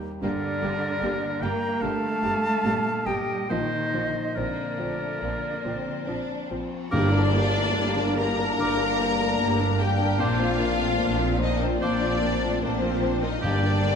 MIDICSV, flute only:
0, 0, Header, 1, 2, 480
1, 0, Start_track
1, 0, Key_signature, -2, "minor"
1, 0, Tempo, 810811
1, 136, Time_signature, 4, 2, 24, 8
1, 1577, Tempo, 857143
1, 3017, Tempo, 840336
1, 4937, Tempo, 806452
1, 8125, End_track
2, 0, Start_track
2, 0, Title_t, "Flute"
2, 0, Program_c, 0, 73
2, 134, Note_on_c, 0, 74, 91
2, 849, Note_on_c, 0, 82, 91
2, 858, Note_off_c, 0, 74, 0
2, 1080, Note_on_c, 0, 81, 115
2, 1088, Note_off_c, 0, 82, 0
2, 1802, Note_on_c, 0, 79, 84
2, 1810, Note_off_c, 0, 81, 0
2, 2052, Note_on_c, 0, 75, 81
2, 2060, Note_off_c, 0, 79, 0
2, 2533, Note_on_c, 0, 74, 68
2, 2541, Note_off_c, 0, 75, 0
2, 3740, Note_off_c, 0, 74, 0
2, 3973, Note_on_c, 0, 86, 78
2, 4196, Note_off_c, 0, 86, 0
2, 4939, Note_on_c, 0, 86, 78
2, 5161, Note_off_c, 0, 86, 0
2, 5890, Note_on_c, 0, 86, 72
2, 6113, Note_off_c, 0, 86, 0
2, 6857, Note_on_c, 0, 86, 77
2, 7079, Note_off_c, 0, 86, 0
2, 7819, Note_on_c, 0, 86, 64
2, 8041, Note_off_c, 0, 86, 0
2, 8125, End_track
0, 0, End_of_file